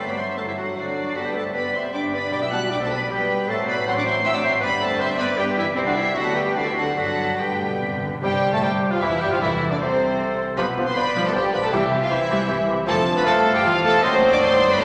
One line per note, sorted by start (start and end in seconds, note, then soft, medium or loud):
0.00 0.33 G1 soft
0.00 0.34 G2 soft
0.00 0.54 G2 medium
0.00 0.37 F#3 soft
0.00 0.17 A3 soft
0.00 0.17 C4 soft
0.00 0.37 C7 soft
0.08 0.19 B3 soft
0.08 0.16 B4 soft
0.08 0.20 B4 soft
0.08 0.19 D5 soft
0.08 0.18 B5 soft
0.17 0.38 F#3 soft
0.17 0.39 C4 soft
0.17 0.38 D4 soft
0.17 0.26 C5 soft
0.17 0.41 C5 soft
0.17 0.38 E5 soft
0.17 0.26 C6 medium
0.37 0.72 G1 soft
0.37 0.73 G2 soft
0.37 0.76 F#3 soft
0.37 0.57 A3 soft
0.37 0.48 A3 medium
0.37 0.57 C4 soft
0.37 0.42 A4 soft
0.37 0.47 A4 soft
0.37 0.47 C5 soft
0.37 0.41 A5 medium
0.37 0.76 C7 soft
0.47 0.52 E3 soft
0.47 0.51 E4 soft
0.47 0.52 E4 soft
0.47 0.52 G4 soft
0.47 0.53 E5 soft
0.57 0.77 F#3 soft
0.57 0.77 D4 soft
0.57 0.66 F#4 soft
0.57 0.67 F#4 soft
0.57 0.65 A4 soft
0.57 0.77 F#5 soft
0.76 1.11 G1 soft
0.76 1.12 G2 soft
0.76 1.15 D3 soft
0.76 1.18 F#3 soft
0.76 0.96 A3 soft
0.76 0.96 C4 soft
0.76 1.15 D4 soft
0.76 1.16 F#4 soft
0.76 1.17 D5 medium
0.76 1.18 C7 soft
0.97 1.16 F#3 soft
0.97 1.15 D4 soft
1.15 1.50 G1 soft
1.15 1.51 G2 soft
1.15 1.25 F#3 medium
1.15 1.53 G3 soft
1.15 1.33 B3 soft
1.15 1.34 D4 soft
1.15 1.20 F#4 medium
1.15 1.21 F#4 medium
1.15 1.26 A4 medium
1.15 1.26 F#5 medium
1.15 1.54 B6 soft
1.25 1.36 G3 soft
1.25 1.34 G4 soft
1.25 1.31 G4 soft
1.25 1.36 B4 soft
1.25 1.37 G5 soft
1.34 1.55 G3 soft
1.34 1.55 A3 medium
1.34 1.54 B3 soft
1.34 1.43 A4 soft
1.34 1.44 A4 soft
1.34 1.55 C5 soft
1.34 1.44 A5 medium
1.54 1.89 G1 soft
1.54 1.90 G2 soft
1.54 1.92 G3 soft
1.54 1.73 B3 soft
1.54 1.74 B3 medium
1.54 1.75 D4 soft
1.54 1.63 B4 medium
1.54 1.64 B4 medium
1.54 1.74 D5 medium
1.54 1.74 B5 medium
1.54 1.93 B6 soft
1.74 1.94 G3 soft
1.74 1.92 B3 soft
1.74 1.93 C4 medium
1.74 1.93 C5 medium
1.74 1.94 C5 medium
1.74 1.94 E5 medium
1.74 1.82 C6 medium
1.93 2.28 G1 medium
1.93 2.29 G2 medium
1.93 2.31 G3 soft
1.93 2.12 B3 soft
1.93 2.12 D4 soft
1.93 2.14 D4 medium
1.93 2.15 D5 medium
1.93 2.03 D5 medium
1.93 2.02 G5 medium
1.93 2.02 D6 medium
1.93 2.32 B6 soft
2.13 2.32 G3 soft
2.13 2.31 B3 soft
2.13 2.33 B3 medium
2.13 2.34 B4 medium
2.13 2.22 B4 medium
2.13 2.32 D5 medium
2.13 2.33 B5 medium
2.32 2.66 B1 medium
2.32 2.67 B2 medium
2.32 2.70 G3 medium
2.32 2.50 B3 medium
2.32 2.50 D4 soft
2.32 2.42 D4 medium
2.32 2.44 D5 medium
2.32 2.38 D5 medium
2.32 2.42 G5 medium
2.32 2.43 D6 medium
2.32 2.71 B6 soft
2.42 2.52 E4 medium
2.42 2.46 E5 medium
2.42 2.55 E5 medium
2.42 2.47 G5 medium
2.42 2.52 E6 medium
2.51 2.71 G3 soft
2.51 2.71 B3 soft
2.51 2.71 F#4 medium
2.51 2.60 F#5 medium
2.51 2.74 F#5 medium
2.51 2.60 A5 medium
2.51 2.71 F#6 medium
2.70 3.06 B1 medium
2.70 3.06 B2 medium
2.70 3.09 G3 soft
2.70 2.89 B3 soft
2.70 2.81 D4 medium
2.70 2.91 D4 soft
2.70 2.74 D5 medium
2.70 2.81 D5 medium
2.70 2.81 G5 medium
2.70 2.76 D6 medium
2.70 3.10 B6 medium
2.80 2.90 A3 medium
2.80 2.85 A4 medium
2.80 2.87 A4 medium
2.80 2.91 C5 medium
2.80 2.92 A5 medium
2.89 3.10 G3 soft
2.89 3.10 B3 soft
2.89 3.11 B3 medium
2.89 3.10 B4 medium
2.89 3.13 B4 medium
2.89 3.11 D5 medium
2.89 3.11 B5 medium
3.09 3.44 B1 medium
3.09 3.45 B2 medium
3.09 3.50 G3 medium
3.09 3.49 G3 medium
3.09 3.29 B3 soft
3.09 3.28 D4 medium
3.09 3.50 G4 medium
3.09 3.49 G4 medium
3.09 3.49 B4 medium
3.09 3.50 B6 medium
3.13 3.49 G5 medium
3.29 3.49 G3 soft
3.29 3.49 B3 medium
3.48 4.59 A1 medium
3.48 4.60 A2 medium
3.48 3.87 F#3 medium
3.48 3.85 F#3 medium
3.48 3.68 A3 medium
3.48 3.85 C4 medium
3.48 3.68 A4 medium
3.48 3.58 A4 medium
3.48 3.68 C5 medium
3.48 3.58 A5 medium
3.48 3.87 C7 medium
3.66 3.76 B3 medium
3.66 3.88 B4 medium
3.66 3.87 B4 medium
3.66 3.76 D5 medium
3.66 3.88 B5 medium
3.85 4.65 F#3 medium
3.85 4.62 F#3 medium
3.85 3.95 C4 medium
3.85 4.62 C4 medium
3.85 3.97 C5 medium
3.85 3.98 C5 medium
3.85 3.96 F#5 medium
3.85 4.66 C7 medium
3.90 3.93 C6 medium
3.96 4.07 D4 medium
3.96 4.08 D5 medium
3.96 4.06 D5 medium
3.96 4.06 F#5 medium
3.96 4.02 D6 medium
4.04 4.24 C4 medium
4.04 4.25 C5 medium
4.04 4.15 C5 medium
4.04 4.14 E5 medium
4.04 4.26 C6 medium
4.24 4.28 E4 medium
4.24 4.34 E5 medium
4.24 4.36 E5 medium
4.24 4.28 G5 medium
4.24 4.35 E6 medium
4.34 4.44 D4 medium
4.34 4.43 D5 medium
4.34 4.38 F#5 medium
4.38 4.46 D6 medium
4.44 4.64 C4 medium
4.44 4.52 C5 medium
4.44 4.51 E5 medium
4.44 4.53 C6 medium
4.61 5.77 G1 medium
4.61 5.16 G2 medium
4.61 5.78 G2 medium
4.61 5.37 G3 medium
4.61 5.12 G3 medium
4.61 4.71 B3 medium
4.61 5.37 D4 medium
4.61 4.70 B4 medium
4.61 4.71 B4 medium
4.61 4.70 D5 medium
4.61 4.82 B5 medium
4.61 5.13 B6 medium
4.81 5.01 A3 medium
4.81 4.99 A4 medium
4.81 5.02 A4 medium
4.81 5.01 C5 medium
4.81 5.01 A5 loud
4.99 5.20 C4 medium
4.99 5.08 C5 medium
4.99 5.22 C5 medium
4.99 5.20 E5 medium
4.99 5.08 C6 loud
5.18 5.39 B3 medium
5.18 5.39 B4 medium
5.18 5.38 B4 medium
5.18 5.38 D5 medium
5.18 5.28 B5 medium
5.38 5.74 G3 medium
5.38 5.76 G3 medium
5.38 5.47 G3 medium
5.38 5.76 D4 medium
5.38 5.57 G4 medium
5.38 5.58 B4 medium
5.38 5.46 G5 medium
5.38 5.75 B6 medium
5.57 5.66 E3 medium
5.57 5.66 E4 medium
5.57 5.67 E4 medium
5.57 5.65 G4 medium
5.57 5.67 E5 medium
5.75 6.15 C2 medium
5.75 5.87 C3 medium
5.75 6.15 G3 medium
5.75 5.80 C4 medium
5.75 6.16 C4 medium
5.75 5.82 C4 medium
5.75 5.80 E4 medium
5.75 5.81 C5 medium
5.75 6.18 C7 medium
5.86 5.92 D3 medium
5.86 5.90 D4 medium
5.86 5.96 D4 medium
5.86 5.97 F#4 medium
5.86 5.97 D5 medium
5.95 6.06 E3 medium
5.95 6.16 E4 medium
5.95 6.15 E4 medium
5.95 6.04 G4 medium
5.95 6.16 E5 medium
6.14 6.96 D2 medium
6.14 6.97 D2 medium
6.14 6.36 F#3 medium
6.14 6.58 G3 medium
6.14 6.55 G3 medium
6.14 6.56 B3 medium
6.14 6.36 F#4 medium
6.14 6.35 F#4 medium
6.14 6.36 A4 medium
6.14 6.37 F#5 medium
6.14 6.56 B6 medium
6.35 6.57 G3 medium
6.35 6.57 G4 medium
6.35 6.56 G4 medium
6.35 6.56 B4 medium
6.35 6.57 G5 medium
6.55 6.96 D3 medium
6.55 6.97 D3 medium
6.55 6.67 D3 medium
6.55 6.98 C4 medium
6.55 6.64 D4 medium
6.55 6.66 D4 medium
6.55 6.67 F#4 medium
6.55 6.67 D5 medium
6.55 7.00 C7 medium
6.65 6.78 E3 medium
6.65 6.70 E4 medium
6.65 6.76 E4 medium
6.65 6.77 G4 medium
6.65 6.77 E5 medium
6.73 6.85 F#3 medium
6.73 6.84 F#4 medium
6.73 6.86 F#4 medium
6.73 6.95 A4 medium
6.73 6.96 F#5 medium
6.96 8.00 G1 medium
6.96 7.05 G2 soft
6.96 7.35 G2 medium
6.96 7.39 D3 medium
6.96 7.38 D3 medium
6.96 7.39 F#3 medium
6.96 7.38 B3 medium
6.96 7.37 F#4 medium
6.96 7.42 F#4 medium
6.96 7.38 A4 medium
6.96 7.39 F#5 medium
6.96 7.39 B6 medium
7.22 7.28 G2 soft
7.30 7.36 G2 soft
7.38 7.45 G2 medium
7.38 8.01 D3 soft
7.38 8.01 G3 soft
7.38 8.01 B3 soft
7.38 8.00 G4 medium
7.38 8.03 G4 medium
7.38 8.02 B4 soft
7.38 8.03 G5 medium
7.38 8.01 B6 medium
7.52 7.59 G2 soft
7.52 7.56 A2 medium
7.60 7.67 G2 medium
7.60 7.82 B2 medium
7.68 7.75 G2 medium
7.76 7.83 G2 medium
7.83 7.91 G2 medium
7.83 8.03 C3 medium
7.92 7.99 G2 medium
8.00 8.06 G2 medium
8.00 8.23 D3 medium
8.08 8.16 G2 medium
8.22 8.51 G1 medium
8.22 8.51 G2 medium
8.22 8.78 C3 loud
8.22 8.51 G3 medium
8.22 8.37 G4 medium
8.22 8.51 G4 medium
8.22 8.98 C5 medium
8.22 8.53 G5 medium
8.22 8.55 G5 medium
8.22 8.52 G5 medium
8.52 8.63 A2 medium
8.52 8.63 A3 medium
8.52 8.65 A3 medium
8.52 8.63 A3 medium
8.52 8.57 A4 medium
8.52 8.63 A4 medium
8.52 8.62 A5 medium
8.52 8.64 A5 medium
8.52 8.63 A5 medium
8.62 8.92 G1 medium
8.62 8.93 G2 medium
8.62 8.92 G3 medium
8.62 8.91 G4 medium
8.62 8.71 G4 medium
8.62 8.90 G5 medium
8.62 8.93 G5 medium
8.62 8.71 G5 medium
8.91 9.02 F2 medium
8.91 8.96 F3 medium
8.91 9.02 F3 medium
8.91 9.03 F3 medium
8.91 8.95 F4 medium
8.91 9.02 F4 medium
8.91 8.96 F5 medium
8.91 9.02 F5 medium
8.91 9.03 F5 medium
9.01 9.21 E1 medium
9.01 9.21 E2 medium
9.01 9.21 E3 medium
9.01 9.11 E3 medium
9.01 9.22 E3 medium
9.01 9.21 E4 medium
9.01 9.11 E4 medium
9.01 9.43 G4 medium
9.01 9.22 E5 medium
9.01 9.21 E5 medium
9.01 9.22 E5 medium
9.20 9.31 G1 medium
9.20 9.31 G2 medium
9.20 9.31 G3 medium
9.20 9.32 G3 medium
9.20 9.31 G4 medium
9.20 9.26 G4 medium
9.20 9.33 G5 medium
9.20 9.31 G5 medium
9.20 9.32 G5 medium
9.30 9.41 F2 medium
9.30 9.41 F3 medium
9.30 9.37 F3 medium
9.30 9.41 F4 medium
9.30 9.36 F4 medium
9.30 9.41 F5 medium
9.30 9.36 F5 medium
9.39 9.71 E1 medium
9.39 9.70 E2 medium
9.39 9.95 C3 medium
9.39 9.53 E3 medium
9.39 9.49 E3 medium
9.39 9.73 E3 medium
9.39 9.69 E4 medium
9.39 9.54 E4 medium
9.39 10.18 A4 medium
9.39 9.48 E5 medium
9.39 9.71 E5 medium
9.39 9.51 E5 medium
9.69 9.81 D2 medium
9.69 9.79 D3 medium
9.69 9.80 D3 medium
9.69 9.84 D3 medium
9.69 9.74 D4 medium
9.69 9.75 D4 medium
9.69 9.79 D5 medium
9.69 9.75 D5 medium
9.69 9.81 D5 medium
9.79 10.37 C2 medium
9.79 10.38 C2 medium
9.79 10.38 C3 medium
9.79 10.37 C3 medium
9.79 10.37 C4 medium
9.79 10.37 C5 medium
9.79 10.38 C5 medium
9.83 10.40 C3 medium
10.19 10.59 A4 medium
10.57 10.65 B1 medium
10.57 10.67 B2 medium
10.57 10.75 F3 medium
10.57 10.67 F3 medium
10.57 10.75 G3 medium
10.57 10.84 B3 medium
10.57 10.66 G4 medium
10.57 10.65 B4 medium
10.57 10.71 B4 medium
10.57 10.96 B4 medium
10.57 10.66 B5 medium
10.57 10.64 D6 medium
10.76 10.85 B1 medium
10.76 10.86 B2 medium
10.76 10.84 D3 medium
10.76 10.84 F3 medium
10.76 10.86 F3 medium
10.76 10.86 G4 medium
10.76 10.84 D6 medium
10.86 10.97 C4 medium
10.86 10.97 C5 medium
10.86 10.96 C5 medium
10.86 10.97 C6 loud
10.95 11.04 B1 medium
10.95 11.05 B2 medium
10.95 11.03 D3 medium
10.95 11.05 F3 medium
10.95 11.25 B3 medium
10.95 11.05 G4 medium
10.95 11.25 B4 medium
10.95 11.24 B4 medium
10.95 11.71 D5 medium
10.95 11.25 B5 loud
10.95 11.03 D6 medium
11.15 11.23 B1 medium
11.15 11.24 B2 medium
11.15 11.33 F3 medium
11.15 11.25 F3 medium
11.15 11.33 G3 medium
11.15 11.24 G4 medium
11.15 11.23 D6 medium
11.24 11.34 A3 medium
11.24 11.33 A4 medium
11.24 11.29 A4 medium
11.24 11.35 A5 medium
11.33 11.42 B1 medium
11.33 11.43 B2 medium
11.33 11.42 D3 medium
11.33 11.42 F3 medium
11.33 11.43 F3 medium
11.33 11.53 G3 medium
11.33 11.42 G4 medium
11.33 11.55 G4 medium
11.33 11.53 G4 medium
11.33 11.53 G5 medium
11.33 11.41 D6 medium
11.53 11.61 B1 medium
11.53 11.62 B2 medium
11.53 11.61 D3 medium
11.53 11.62 F3 medium
11.53 11.57 B3 medium
11.53 11.62 G4 medium
11.53 11.57 B4 medium
11.53 11.65 B4 medium
11.53 11.63 B5 medium
11.53 11.60 D6 medium
11.62 11.72 A3 medium
11.62 11.72 A4 medium
11.62 11.74 A4 medium
11.62 11.73 A5 medium
11.72 11.80 C2 medium
11.72 12.26 C3 medium
11.72 11.81 C3 medium
11.72 11.90 E3 medium
11.72 11.82 E3 medium
11.72 11.91 G3 medium
11.72 11.86 G3 medium
11.72 12.01 G4 medium
11.72 11.82 G4 medium
11.72 12.09 E5 medium
11.72 11.82 G5 loud
11.72 11.78 C6 medium
11.91 11.99 C2 medium
11.91 12.00 C3 medium
11.91 12.00 E3 medium
11.91 12.01 G4 medium
11.91 11.98 C6 medium
12.01 12.07 F3 medium
12.01 12.10 F4 medium
12.01 12.11 F4 medium
12.01 12.11 F5 medium
12.10 12.19 C2 medium
12.10 12.19 C3 medium
12.10 12.19 E3 medium
12.10 12.67 E3 medium
12.10 12.67 E4 medium
12.10 12.68 E4 medium
12.10 12.19 G4 medium
12.10 12.50 C5 medium
12.10 12.69 E5 medium
12.10 12.16 C6 medium
12.30 12.38 C2 medium
12.30 12.38 C3 medium
12.30 12.39 E3 medium
12.30 12.48 E3 medium
12.30 12.48 G3 medium
12.30 12.39 G4 medium
12.30 12.36 C6 medium
12.48 12.57 C2 medium
12.48 12.57 C3 medium
12.48 12.57 E3 medium
12.48 12.85 G4 medium
12.48 12.58 G4 medium
12.48 12.55 C6 medium
12.67 12.76 C2 medium
12.67 12.77 C3 medium
12.67 12.76 E3 medium
12.67 12.77 G4 medium
12.67 12.75 C6 medium
12.86 13.23 F1 loud
12.86 13.24 F2 medium
12.86 13.24 D3 medium
12.86 13.23 F3 medium
12.86 14.84 A3 medium
12.86 13.01 A3 medium
12.86 13.26 F4 medium
12.86 13.23 A4 medium
12.86 13.01 A4 loud
12.86 12.96 A4 loud
12.86 13.15 A5 loud
12.86 13.23 D6 medium
13.16 13.26 B3 loud
13.16 13.28 B4 medium
13.16 13.26 B4 medium
13.16 13.21 B5 loud
13.25 13.64 G1 medium
13.25 13.64 G2 medium
13.25 14.04 E3 medium
13.25 13.63 F3 medium
13.25 13.54 A3 loud
13.25 13.63 A4 medium
13.25 13.54 A4 loud
13.25 13.56 A4 loud
13.25 14.04 F5 loud
13.25 13.34 A5 loud
13.25 13.64 D6 medium
13.54 13.65 G3 medium
13.54 13.64 G4 medium
13.54 13.58 G4 medium
13.54 13.65 G5 loud
13.63 14.04 E1 medium
13.63 14.04 E2 medium
13.63 14.05 F3 medium
13.63 13.75 F3 loud
13.63 13.83 F4 loud
13.63 13.73 F4 loud
13.63 14.02 A4 medium
13.63 13.84 F5 loud
13.63 14.05 D6 medium
13.84 14.03 A3 loud
13.84 14.06 A4 loud
13.84 14.03 A4 loud
13.84 14.03 A5 loud
14.02 14.42 F#1 loud
14.02 14.42 F#2 loud
14.02 14.80 D#3 loud
14.02 14.42 F#3 medium
14.02 14.33 C4 loud
14.02 14.42 A4 medium
14.02 14.32 C5 loud
14.02 14.35 C5 loud
14.02 14.43 D#5 loud
14.02 14.12 C6 loud
14.02 14.42 D#6 medium
14.32 14.38 D4 loud
14.32 14.42 D5 loud
14.32 14.44 D5 loud
14.32 14.37 D6 loud
14.41 14.80 G1 loud
14.41 14.81 G2 loud
14.41 14.80 F#3 medium
14.41 14.57 C4 loud
14.41 14.80 A4 medium
14.41 14.71 C5 loud
14.41 14.72 C5 loud
14.41 14.83 D5 loud
14.41 14.70 C6 loud
14.41 14.81 D#6 medium
14.71 14.81 B3 loud
14.71 14.81 B4 loud
14.71 14.76 B4 loud
14.71 14.81 B5 loud
14.80 14.84 A1 medium
14.80 14.84 A2 loud
14.80 14.84 D#3 medium
14.80 14.84 F#3 medium
14.80 14.84 A3 loud
14.80 14.84 A4 loud
14.80 14.84 A4 medium
14.80 14.84 C5 loud
14.80 14.84 D#6 medium